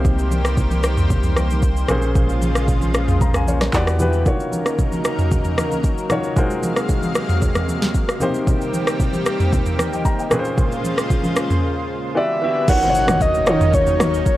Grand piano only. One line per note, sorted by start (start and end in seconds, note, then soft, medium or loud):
0.00 0.63 C3 medium
0.00 0.63 A#3 medium
0.00 0.63 D#4 medium
0.00 0.64 G4 medium
0.00 0.64 C5 loud
1.89 2.73 A#2 medium
1.89 2.74 A#3 medium
1.89 2.74 C#4 medium
1.89 2.74 G#4 medium
1.89 2.75 C5 loud
3.22 3.34 A#5 medium
3.35 3.46 F5 medium
3.35 3.47 G#5 medium
3.48 3.60 C#5 medium
3.48 3.60 F5 medium
3.62 3.87 A#4 medium
3.62 3.86 C#5 medium
3.73 3.94 E3 medium
3.73 3.95 B3 medium
3.73 3.95 F#4 medium
3.73 3.95 G4 medium
3.73 3.96 D5 loud
3.99 4.21 E3 medium
3.99 4.21 B3 medium
3.99 4.21 F#4 medium
3.99 4.22 G4 medium
3.99 4.22 B4 medium
4.25 5.10 D#3 medium
4.25 5.10 A#3 medium
4.25 5.11 F4 medium
4.25 5.11 F#4 medium
4.25 5.11 C#5 medium
6.10 6.31 D#3 medium
6.10 6.32 A#3 medium
6.10 6.32 F4 medium
6.10 6.32 F#4 medium
6.10 6.32 C#5 medium
6.36 7.21 G#3 medium
6.36 7.21 D#4 medium
6.36 7.21 F4 medium
6.36 7.22 F#4 medium
6.36 7.22 A#4 medium
6.36 7.22 C5 medium
8.20 9.05 C3 medium
8.20 9.05 A#3 medium
8.20 9.05 D#4 medium
8.20 9.06 G4 medium
8.20 9.06 C5 loud
9.93 10.05 D#5 medium
9.93 10.04 G5 medium
10.05 10.17 G5 medium
10.05 10.18 A#5 medium
10.19 10.44 D#5 medium
10.19 10.44 G5 medium
10.30 11.15 A#2 medium
10.30 11.16 A#3 medium
10.30 11.16 C#4 medium
10.30 11.16 G#4 medium
10.30 10.39 B4 medium
10.39 11.20 C5 loud
12.15 12.36 E3 medium
12.15 12.37 B3 medium
12.15 12.37 F#4 medium
12.15 12.37 G4 medium
12.15 12.38 D5 loud
12.41 12.63 E3 medium
12.41 12.63 B3 medium
12.41 12.64 F#4 medium
12.41 12.64 G4 medium
12.41 12.64 E5 medium
12.68 12.79 D#3 medium
12.68 12.79 A#3 medium
12.68 12.79 F4 medium
12.68 12.80 F#4 medium
12.68 12.80 C#5 medium
12.81 13.34 D#3 medium
12.81 13.34 A#3 medium
12.81 13.35 D#4 medium
12.81 13.35 F#4 medium
12.81 12.89 C5 medium
12.90 13.38 C#5 medium
13.46 14.31 D#3 medium
13.46 14.31 A#3 medium
13.46 14.32 F4 medium
13.46 14.32 F#4 medium
13.46 14.32 C#5 medium